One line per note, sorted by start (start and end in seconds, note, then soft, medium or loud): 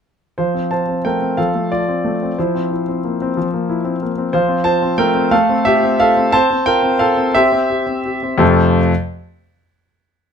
0.38 1.37 F3 soft
0.38 0.69 F4 soft
0.38 0.71 C5 medium
0.54 0.81 C4 soft
0.71 0.98 F4 soft
0.71 1.03 C5 soft
0.71 1.04 A5 medium
0.88 1.15 C4 soft
1.05 1.31 A3 soft
1.05 1.36 A#4 medium
1.05 1.38 G5 medium
1.22 1.48 C4 soft
1.37 2.34 F3 soft
1.37 1.69 A4 medium
1.37 1.71 F5 medium
1.55 1.81 A3 soft
1.72 2.34 F4 medium
1.72 2.38 D5 medium
1.88 2.14 C4 soft
2.04 2.31 A3 soft
2.23 2.38 C4 soft
2.38 3.36 F3 medium
2.38 2.70 E4 soft
2.38 4.02 C5 medium
2.55 2.81 C4 soft
2.71 2.98 E4 soft
2.88 3.14 C4 soft
3.05 3.30 A#3 soft
3.22 3.47 C4 soft
3.37 4.31 F3 medium
3.54 3.79 A#3 soft
3.69 3.95 E4 soft
3.85 4.11 C4 soft
4.02 4.28 A#3 soft
4.18 4.34 C4 soft
4.33 5.30 F3 medium
4.33 4.63 F4 medium
4.33 4.64 C5 medium
4.48 4.76 C4 soft
4.64 4.92 F4 soft
4.64 4.97 C5 medium
4.64 4.98 A5 medium
4.82 5.09 C4 soft
4.98 5.25 A3 medium
4.98 5.30 A#4 medium
4.98 5.32 G5 medium
5.14 5.32 C4 medium
5.31 6.29 A3 medium
5.31 5.63 A4 medium
5.31 5.65 F5 medium
5.49 5.76 C4 medium
5.65 5.93 F4 medium
5.65 5.98 G4 medium
5.65 5.99 E5 loud
5.83 6.10 C4 medium
6.00 6.27 F4 soft
6.00 6.31 A4 medium
6.00 6.33 F5 loud
6.17 6.31 C4 medium
6.32 6.49 C4 medium
6.32 6.65 C5 medium
6.32 6.67 A5 loud
6.50 6.77 C4 medium
6.66 6.94 F4 medium
6.66 6.99 A#4 medium
6.66 7.01 G5 loud
6.83 7.11 C4 medium
6.99 7.28 F4 medium
6.99 7.33 A4 medium
6.99 7.35 F5 medium
7.17 7.34 C4 medium
7.35 7.51 C4 medium
7.35 7.69 G4 medium
7.35 8.41 E5 loud
7.52 7.81 C4 medium
7.70 7.99 G4 medium
7.87 8.16 C4 soft
8.06 8.34 G4 soft
8.23 8.37 C4 soft
8.38 8.77 F2 medium
8.38 8.77 C3 medium
8.38 8.78 A3 medium
8.38 8.78 C4 medium
8.38 8.78 F4 medium
8.38 8.78 A4 medium
8.38 8.78 F5 medium